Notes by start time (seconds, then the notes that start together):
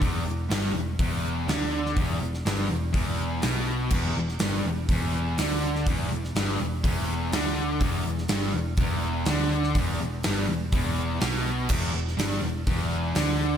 0.01 E1 E2, kick, open hi-hat
0.26 E1 E2
0.50 G1 G2, snare, open hi-hat
0.74 E1 E2
0.99 E1 E2, kick, open hi-hat
1.47 D2 D3, snare, open hi-hat
1.86 snare
1.96 E1 E2, kick, open hi-hat
2.20 E1 E2
2.34 snare
2.45 G1 G2, snare, open hi-hat
2.70 E1 E2
2.93 E1 E2, kick, open hi-hat
3.42 B1 B2, snare, open hi-hat
3.90 E1 E2, kick, crash
4.15 E1 E2
4.29 snare
4.39 G1 G2, snare, open hi-hat
4.65 E1 E2
4.89 E1 E2, kick, open hi-hat
5.38 D2 D3, snare, open hi-hat
5.75 snare
5.87 E1 E2, kick, open hi-hat
6.10 E1 E2
6.24 snare
6.35 G1 G2, snare, open hi-hat
6.60 E1 E2
6.84 E1 E2, kick, open hi-hat
7.32 D2 D3, snare, open hi-hat
7.80 E1 E2, kick, open hi-hat
8.05 E1 E2
8.18 snare
8.28 G1 G2, snare, open hi-hat
8.54 E1 E2
8.77 E1 E2, kick, open hi-hat
9.25 D2 D3, snare, open hi-hat
9.64 snare
9.75 E1 E2, kick, open hi-hat
10.01 E1 E2
10.23 G1 G2, snare, open hi-hat
10.49 E1 E2
10.72 E1 E2, kick, open hi-hat
11.20 B1 B2, snare, open hi-hat
11.69 E1 E2, kick, crash
11.94 E1 E2
12.08 snare
12.17 G1 G2, snare, open hi-hat
12.42 E1 E2
12.67 E1 E2, kick, open hi-hat
13.15 D2 D3, snare, open hi-hat